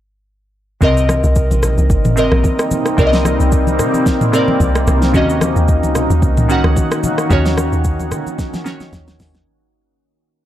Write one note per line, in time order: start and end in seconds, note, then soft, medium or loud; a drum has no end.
0.81 1.22 C2 loud
0.81 1.68 C3 medium
0.81 5.10 C3 medium
0.81 5.10 G3 medium
0.81 9.43 A#3 medium
0.81 1.69 C4 medium
0.81 5.10 C4 medium
0.81 5.10 D#4 medium
0.81 1.70 A#4 medium
0.81 1.70 D#5 loud
0.81 kick loud
0.81 low conga medium
0.81 shaker medium
0.97 shaker soft
1.09 cross-stick loud
1.09 high conga medium
1.09 shaker medium
1.24 1.50 C2 loud
1.24 shaker soft
1.36 kick loud
1.36 shaker medium
1.51 1.77 A#1 loud
1.51 high conga medium
1.51 shaker medium
1.63 cross-stick medium
1.63 low conga medium
1.63 shaker loud
1.78 1.89 C2 medium
1.78 high conga medium
1.78 shaker medium
1.90 2.30 G1 loud
1.90 kick loud
1.90 shaker medium
2.05 mid tom medium
2.05 high conga medium
2.05 shaker soft
2.16 2.82 C3 medium
2.16 2.83 C4 medium
2.16 2.84 A#4 medium
2.16 2.84 D#5 medium
2.16 shaker medium
2.32 2.44 A#1 loud
2.32 cross-stick medium
2.32 high conga medium
2.44 kick medium
2.44 high conga medium
2.44 shaker medium
2.59 cross-stick loud
2.59 shaker medium
2.71 high conga medium
2.71 low conga medium
2.71 shaker medium
2.86 cross-stick medium
2.86 shaker medium
2.97 3.39 C2 loud
2.97 3.84 C3 medium
2.97 3.85 C4 medium
2.97 3.86 A#4 medium
2.97 3.06 D5 medium
2.97 kick loud
2.97 low conga medium
2.97 shaker medium
3.07 3.89 D#5 loud
3.13 snare medium
3.13 shaker soft
3.25 cross-stick medium
3.25 high conga medium
3.25 shaker medium
3.40 3.81 C2 medium
3.40 shaker soft
3.52 kick loud
3.52 shaker medium
3.67 high conga medium
3.67 shaker medium
3.79 4.31 C3 loud
3.79 cross-stick medium
3.79 low conga medium
3.79 shaker loud
3.94 high conga medium
3.94 shaker medium
4.06 kick loud
4.06 snare medium
4.06 shaker medium
4.21 mid tom loud
4.21 high conga medium
4.21 shaker soft
4.32 4.99 C3 medium
4.32 4.99 C4 medium
4.32 5.00 A#4 medium
4.32 5.00 D5 medium
4.32 cross-stick medium
4.32 shaker medium
4.48 high conga medium
4.60 4.86 C2 medium
4.60 kick medium
4.60 high conga medium
4.60 shaker medium
4.75 cross-stick loud
4.75 shaker medium
4.87 5.16 C2 medium
4.87 cross-stick medium
4.87 high conga medium
4.87 low conga medium
4.87 shaker medium
5.02 snare medium
5.02 shaker medium
5.13 5.55 D#2 loud
5.13 6.01 D#3 medium
5.13 9.43 D#3 medium
5.13 6.01 C#4 medium
5.13 9.43 C#4 medium
5.13 9.43 D#4 medium
5.13 9.43 F#4 medium
5.13 6.02 F#4 medium
5.13 6.03 D#5 loud
5.13 kick loud
5.13 low conga medium
5.13 shaker medium
5.30 shaker medium
5.41 cross-stick loud
5.41 high conga medium
5.41 shaker medium
5.56 5.85 D#2 medium
5.56 shaker soft
5.68 kick loud
5.68 shaker medium
5.83 6.09 C#2 loud
5.83 high conga medium
5.83 shaker medium
5.95 cross-stick medium
5.95 low conga medium
5.95 shaker medium
6.10 6.22 D#2 medium
6.10 high conga medium
6.10 shaker medium
6.22 6.63 C2 loud
6.22 kick loud
6.22 shaker medium
6.37 mid tom medium
6.37 high conga medium
6.37 shaker soft
6.48 7.15 D#3 medium
6.48 7.15 C#4 medium
6.48 7.16 F#4 medium
6.48 7.17 F#5 medium
6.48 shaker medium
6.64 6.76 C#2 medium
6.64 cross-stick medium
6.64 high conga medium
6.76 kick medium
6.76 high conga medium
6.76 shaker medium
6.92 cross-stick loud
6.92 shaker medium
7.03 high conga medium
7.03 low conga medium
7.03 shaker medium
7.18 cross-stick medium
7.18 shaker medium
7.29 7.71 D#2 loud
7.29 8.17 D#3 medium
7.29 8.18 C#4 medium
7.29 8.18 F#4 medium
7.29 8.19 C#5 loud
7.29 kick loud
7.29 low conga medium
7.29 shaker medium
7.46 snare medium
7.46 shaker soft
7.57 cross-stick loud
7.57 high conga medium
7.57 shaker medium
7.72 8.13 D#2 medium
7.72 shaker soft
7.84 kick loud
7.84 shaker medium
8.00 high conga medium
8.00 shaker medium
8.12 8.64 D#3 loud
8.12 cross-stick medium
8.12 low conga medium
8.12 shaker loud
8.27 high conga medium
8.27 shaker medium
8.39 kick loud
8.39 snare medium
8.39 shaker medium
8.54 snare medium
8.54 high conga medium
8.54 shaker soft
8.64 9.31 D#3 medium
8.64 9.32 C#4 medium
8.64 9.32 F#4 medium
8.64 9.33 C#5 loud
8.64 snare medium
8.64 shaker medium
8.80 snare medium
8.80 high conga medium
8.80 shaker medium
8.93 9.19 D#2 loud
8.93 kick medium
8.93 snare medium
8.93 high conga medium
8.93 shaker medium
9.08 snare medium
9.08 shaker medium
9.20 9.46 D#2 loud
9.20 snare loud
9.20 open hi-hat medium
9.20 high conga medium
9.20 low conga medium
9.20 shaker medium
9.35 snare loud
9.35 shaker medium